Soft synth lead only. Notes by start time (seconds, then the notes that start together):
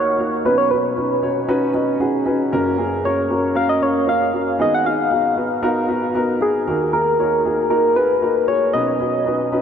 Already playing: C#5
0.46 B4
0.58 C#5
0.71 B4
3.05 C#5
3.56 F5
3.69 D#5
3.83 C#5
4.09 F5
4.62 D#5
4.75 F#5
4.86 F5
6.42 G#4
6.93 A#4
7.70 A#4
7.96 B4
8.48 C#5
8.73 D#5